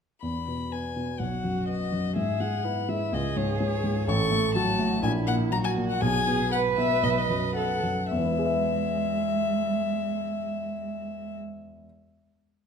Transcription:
0.22 grand piano E2, violin B5
0.47 grand piano B2
0.71 grand piano B3, violin G#5
0.96 grand piano B2
1.19 grand piano B1, cello F#4, violin F#5
1.43 grand piano F#2
1.68 grand piano B3, violin D#5
1.92 grand piano F#2
2.16 grand piano G#2, cello G#4, violin E5
2.40 grand piano G#3, violin F#5
2.64 grand piano B3, cello E4
2.89 grand piano G#3, violin E5
3.13 grand piano C#2, cello G#4, violin D#5
3.36 grand piano G#2, violin C#5
3.60 grand piano G#3, violin C#5
3.84 grand piano G#2
4.08 grand piano A1, cello A4, violin C#6
4.31 grand piano A2
4.55 grand piano F#3, cello F#4, violin A5
4.79 grand piano A2
5.02 grand piano A#1, cello E4, violin G#5
5.27 grand piano A#2, violin F#5
5.52 grand piano F#3, cello F#4, violin A#5
5.64 violin G#5
5.77 grand piano A#2
5.89 violin F#5
6.01 grand piano B1, cello G#4, violin G#5
6.27 grand piano B2
6.52 grand piano B3, cello B4, violin F#5
6.77 grand piano B2, violin E5
7.03 grand piano B1, violin D#5
7.10 violin E5
7.18 violin D#5
7.30 grand piano F#2
7.55 grand piano B3, cello A4, violin F#5
7.83 grand piano F#2
8.10 grand piano E2, cello G#3, violin E5
8.18 grand piano E3
8.25 grand piano B3
8.32 grand piano E4
8.39 grand piano G#4
8.46 grand piano E5

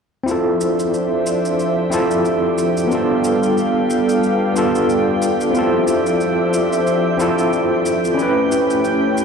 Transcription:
0.23 tine electric piano C4 E4, analog synth pad C5
0.28 analog synth pad F3 D4 E5, tine electric piano F4 A4, synth texture G4 G5, shaker
0.61 shaker
0.80 shaker
0.94 shaker
1.26 shaker
1.45 shaker
1.59 shaker
1.90 tine electric piano C4 E4 F4 A4, shaker
2.11 shaker
2.25 shaker
2.58 shaker
2.77 shaker
2.87 analog synth pad G3 B3 A4 F5, tine electric piano B3 D4
2.92 tine electric piano F4 A4, shaker
3.24 shaker
3.43 shaker
3.57 shaker
3.90 shaker
4.09 shaker
4.23 shaker
4.54 tine electric piano B3 D4 F4, shaker
4.58 tine electric piano A4
4.75 shaker
4.89 shaker
5.22 shaker
5.41 shaker
5.51 analog synth pad F3 D4 C5 E5, tine electric piano C4 E4, shaker
5.56 tine electric piano F4 A4
5.88 shaker
6.06 shaker
6.20 shaker
6.54 shaker
6.73 shaker
6.87 shaker
7.18 tine electric piano C4 E4 F4 A4, shaker
7.38 shaker
7.53 shaker
7.86 shaker
8.05 shaker
8.14 analog synth pad A3 C#4 B4 G5, tine electric piano C#4 E4
8.19 tine electric piano G4 B4, shaker
8.52 shaker
8.70 shaker
8.84 shaker
9.17 shaker

